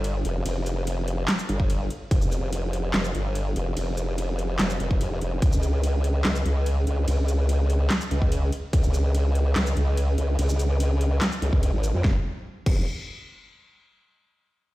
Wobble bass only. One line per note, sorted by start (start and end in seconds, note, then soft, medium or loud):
0.00 0.23 G1 loud
0.25 0.44 F1 loud
0.45 1.27 F1 loud
1.49 1.89 G1 medium
2.11 2.92 F1 loud
2.94 3.13 F1 loud
3.15 3.54 G1 loud
3.56 3.75 F1 loud
3.77 4.58 F1 loud
4.59 4.78 F1 loud
4.80 5.20 F1 loud
5.21 5.41 F1 loud
5.42 6.23 C#2 loud
6.25 6.44 C#2 loud
6.46 6.85 C#2 loud
6.87 7.06 C#2 loud
7.08 7.89 C#2 loud
8.11 8.51 C#2 loud
8.73 9.54 C#2 loud
9.56 9.75 C#2 loud
9.76 10.16 C#2 medium
10.18 10.37 C#2 loud
10.39 11.20 C#2 loud
11.42 11.51 C#2 medium
11.53 11.72 C#2 loud
11.73 11.92 G#1 loud
11.94 12.03 F2 loud
12.04 12.16 F1 loud
12.66 12.86 F1 loud